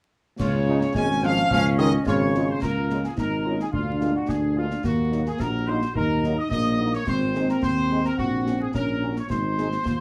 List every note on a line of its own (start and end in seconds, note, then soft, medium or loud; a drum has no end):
0.39 0.86 C#2 medium
0.39 0.92 C#3 medium
0.39 0.52 F4 medium
0.39 0.91 C#5 medium
0.39 concert bass drum medium
0.39 snare medium
0.39 crash medium
0.67 0.77 G#3 medium
0.67 0.77 C#4 medium
0.67 0.80 D#4 medium
0.67 0.77 F4 medium
0.81 snare medium
0.95 1.41 G#1 medium
0.95 1.08 G#3 loud
0.95 1.47 C#4 medium
0.95 1.01 G#5 loud
0.95 1.21 G#5 loud
0.95 concert bass drum medium
0.95 snare medium
1.23 1.49 F3 medium
1.23 1.33 G#3 medium
1.23 1.33 C#4 medium
1.23 1.33 F4 medium
1.23 1.50 F5 loud
1.23 1.49 F5 medium
1.23 snare medium
1.37 snare medium
1.50 1.97 C#2 loud
1.50 1.63 F3 loud
1.50 2.02 C#4 loud
1.50 1.63 F5 loud
1.50 1.77 F5 loud
1.50 concert bass drum medium
1.50 snare medium
1.77 1.91 D#3 loud
1.77 1.89 G#3 medium
1.77 1.89 C#4 medium
1.77 1.89 F4 medium
1.77 2.04 D#5 loud
1.77 1.91 D#5 loud
1.77 snare medium
2.06 2.52 G#1 medium
2.06 2.58 C#3 medium
2.06 2.19 F4 medium
2.06 2.62 C#5 medium
2.06 2.45 C#5 loud
2.06 2.45 C#6 loud
2.06 concert bass drum medium
2.06 snare medium
2.34 2.44 G#3 medium
2.34 2.44 C#4 medium
2.34 2.44 F4 medium
2.34 snare medium
2.48 2.63 C5 medium
2.48 2.62 C6 medium
2.61 3.08 C#2 medium
2.61 3.19 F4 medium
2.61 3.00 A#4 medium
2.61 3.00 A#5 medium
2.61 concert bass drum medium
2.61 snare medium
2.61 crash soft
2.89 2.99 G#3 soft
2.89 3.00 C#4 soft
2.89 2.99 F4 soft
2.89 snare soft
3.03 3.11 G#4 medium
3.03 3.09 G#5 medium
3.03 snare soft
3.17 3.64 G#1 medium
3.17 3.72 D#4 medium
3.17 3.57 A#4 medium
3.17 3.57 A#5 medium
3.17 concert bass drum medium
3.17 snare medium
3.45 3.55 G#3 soft
3.45 3.55 C#4 medium
3.45 3.55 F4 medium
3.59 3.66 G#4 medium
3.59 3.66 G#5 medium
3.59 snare soft
3.72 4.19 D2 medium
3.72 4.80 D4 medium
3.72 4.11 F4 medium
3.72 4.12 F5 medium
3.72 concert bass drum medium
4.01 4.11 G#3 soft
4.01 4.11 A#3 medium
4.01 4.11 F4 soft
4.01 snare soft
4.14 4.29 F#4 medium
4.14 4.28 F#5 medium
4.28 4.75 D2 medium
4.28 4.57 G#4 medium
4.28 4.56 G#5 medium
4.28 concert bass drum medium
4.28 snare medium
4.56 4.67 G#3 medium
4.56 4.67 A#3 medium
4.56 4.66 F4 medium
4.56 4.83 F4 medium
4.56 4.63 F5 medium
4.70 snare soft
4.84 5.31 D#2 medium
4.84 5.41 A#3 medium
4.84 5.23 F#4 medium
4.84 5.23 F#5 medium
4.84 concert bass drum medium
4.84 snare medium
5.11 5.21 F#3 soft
5.11 5.22 A#3 medium
5.11 5.22 D#4 medium
5.11 snare soft
5.26 5.40 G#4 medium
5.26 5.32 G#5 medium
5.26 snare soft
5.39 5.86 A#1 medium
5.39 5.94 F#4 medium
5.39 5.68 A#4 medium
5.39 5.46 A#5 medium
5.39 concert bass drum medium
5.39 snare medium
5.67 5.78 F#3 medium
5.67 5.78 A#3 medium
5.67 5.78 D#4 medium
5.67 5.95 C5 medium
5.67 5.93 C6 medium
5.81 snare soft
5.95 6.37 D#2 medium
5.95 6.47 D#4 medium
5.95 6.34 A#4 medium
5.95 6.34 A#5 medium
5.95 concert bass drum medium
6.23 6.34 F#3 medium
6.23 6.34 A#3 medium
6.23 6.34 D#4 medium
6.23 snare soft
6.38 6.49 D#5 medium
6.38 6.51 D#6 medium
6.50 6.98 A#1 medium
6.50 7.03 A#3 medium
6.50 6.90 D#5 loud
6.50 6.91 D#6 medium
6.50 concert bass drum medium
6.50 snare medium
6.79 6.89 F#3 medium
6.79 6.89 A#3 medium
6.79 6.89 D#4 medium
6.93 7.06 C#5 loud
6.93 7.08 C#6 medium
6.93 snare soft
7.07 7.53 G#1 medium
7.07 8.70 C4 medium
7.07 7.46 C5 medium
7.07 7.46 C6 medium
7.07 concert bass drum medium
7.07 snare medium
7.07 crash soft
7.35 7.45 G#3 medium
7.35 7.45 C4 medium
7.35 7.45 D#4 medium
7.35 snare soft
7.49 7.64 A#4 medium
7.49 7.56 A#5 medium
7.49 snare medium
7.62 8.09 D#2 medium
7.62 8.02 C5 medium
7.62 8.02 C6 medium
7.62 concert bass drum medium
7.62 snare medium
7.90 8.00 G#3 medium
7.90 8.00 C4 medium
7.90 8.00 D#4 medium
8.04 8.18 A#4 medium
8.04 8.11 A#5 medium
8.04 snare soft
8.18 8.65 A#1 medium
8.18 8.57 F#4 medium
8.18 8.57 F#5 medium
8.18 concert bass drum medium
8.46 8.56 C#4 medium
8.46 8.56 F#4 medium
8.46 snare medium
8.60 8.67 G#4 medium
8.60 8.74 G#5 medium
8.74 9.21 A#1 medium
8.74 9.08 C#4 medium
8.74 9.13 A#4 medium
8.74 9.16 A#5 medium
8.74 concert bass drum medium
8.74 snare medium
9.02 9.12 C#4 medium
9.02 9.12 F#4 soft
9.16 9.31 C#5 medium
9.16 9.22 C#6 medium
9.16 snare soft
9.29 9.76 G#1 medium
9.29 9.77 D#4 medium
9.29 10.00 C5 medium
9.29 10.00 C6 medium
9.29 concert bass drum medium
9.29 snare medium
9.58 9.68 G#3 soft
9.58 9.68 D#4 soft
9.58 9.68 G#4 soft
9.58 snare soft
9.71 snare soft
9.85 10.00 D#2 medium
9.85 10.00 F4 medium
9.85 concert bass drum medium
9.85 snare medium